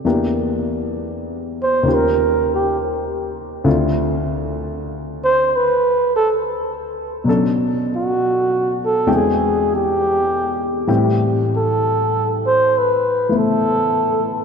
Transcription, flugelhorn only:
X:1
M:4/4
L:1/8
Q:"Swing" 1/4=66
K:Ephr
V:1 name="Flugelhorn"
z3 c _B G z2 | z3 c B A z2 | z ^F2 A ^G =G3 | z A2 c B A3 |]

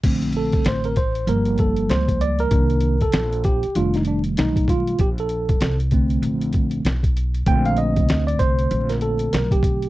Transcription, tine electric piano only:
X:1
M:4/4
L:1/16
Q:"Swing 16ths" 1/4=97
K:Bb
V:1 name="Tine electric piano"
z2 A2 c B c2 B2 A2 c2 d B- | B3 A3 G2 F E D2 E2 F2 | G A4 z8 z3 | g f e3 d c3 B A2 B G3 |]
V:2 name="Tine electric piano"
[D,A,C]6 z2 [F,G,B,]8 | [E,B,D]2 z6 [E,G,A,D]8 | z6 [D,A,C]6 z4 | [D,A,C]16 |]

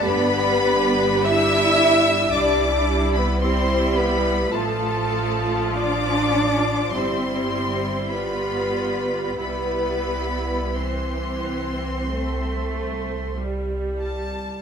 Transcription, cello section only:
X:1
M:4/4
L:1/16
Q:1/4=49
K:C
V:1 name="Cello section"
B,4 E4 D3 B, C2 B,2 | A,4 D4 C4 B,4 | B,4 C8 z4 |]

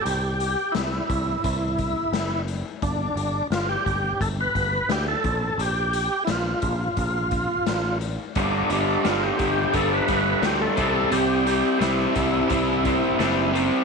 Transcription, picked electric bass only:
X:1
M:4/4
L:1/8
Q:1/4=87
K:C
V:1 name="Picked electric bass" clef=bass
C,,2 C,, C,, C,,2 ^F,,,2 | G,,, G,,, G,,, G,,, G,,, G,,, D,, _B,,, | _B,,,2 B,,, B,,, B,,,2 A,,,2 | G,,, G,,, G,,, G,,, G,,, G,,, D,, C,, |
C,,2 C,, C,, C,,2 ^F,,,2 |]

